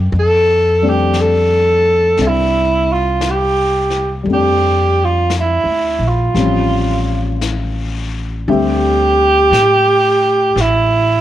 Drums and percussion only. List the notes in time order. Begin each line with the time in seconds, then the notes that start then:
0.11 brush sweep
1.14 brush sweep, snare, hi-hat pedal
2.17 brush sweep, snare
3.21 brush sweep, snare, hi-hat pedal
3.90 snare
4.25 brush sweep
5.30 brush sweep, snare, hi-hat pedal
6.35 brush sweep, snare
7.41 brush sweep, snare, hi-hat pedal
8.48 brush sweep
9.53 brush sweep, snare, hi-hat pedal
10.57 brush sweep, snare